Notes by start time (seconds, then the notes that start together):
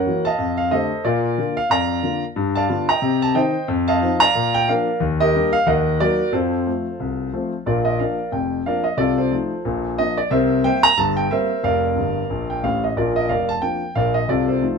Already playing: A#4 C#5 F#5
0.06 E3 A#3 F#4
0.25 D#5 F5 A5
0.39 F2
0.57 F5
0.71 D3 A3 G4 A4 C5 D#5
1.05 A#2 F4 A#4 D5
1.38 D3 A#3 F4
1.57 F5
1.70 F2 D5 F5 A#5
2.03 D3 A#3 F4
2.36 G2
2.55 D5 F5 A5
2.69 D3 B3 F4
2.89 D#5 G5 A#5
3.02 C3
3.22 A5
3.34 D#3 C4 D#4 C5 D#5 G5
3.68 F2
3.88 D#5 F5 A5
4.01 F3 C4 D#4
4.20 D5 F5 A#5
4.35 A#2
4.54 G5
4.68 F3 A#3 D4 A#4 D5 F5
5.00 D#2
5.20 G4 A#4 D#5
5.34 G3 A#3 D4
5.53 F5
5.66 D#2 A#4 D#5 F#5
6.00 F#3 A#3 D#4 F#4 A#4 D5
6.33 F2 F4 A4 C5
6.67 F3 A3 C4
7.00 C2
7.33 F3 A3 C4
7.66 A#1 A#2 F4 A#4 D5
7.85 D#5
7.99 F3 A#3 D4 A#4 D5 F5
8.32 F1 F2 G5
8.66 F3 A#3 D4 A#4 D5 F5
8.84 D#5
8.97 C2 C3 F4 A4 D5
9.18 F4 A4 C5
9.31 F3 A3 D#4
9.65 A#1 A#2
9.98 F3 A#3 D4 D#5
10.17 D5
10.30 C2 C3 A#4 C5 E5
10.64 G3 A#3 C4 C5 E5 G5
10.83 A#5
10.97 G1 G2 A5
11.17 G5
11.31 G3 A#3 C4 A#4 C5 E5
11.63 F1 F2 A#4 D5 F5
11.95 G1 G2
12.30 A#1 A#2
12.50 G5
12.63 A1 A2 F5
12.84 D#5
12.96 A#1 A#2 F4 A#4 D5
13.16 D#5
13.29 F1 F2 A#4 D5 F5
13.49 A5
13.62 F3 A#3 D4 G5
13.95 A#1 A#2 A#4 D5 F5
14.14 D#5
14.29 C2 C3 F4 A4 D5
14.48 F4 A4 C5
14.62 F3 A3 D#4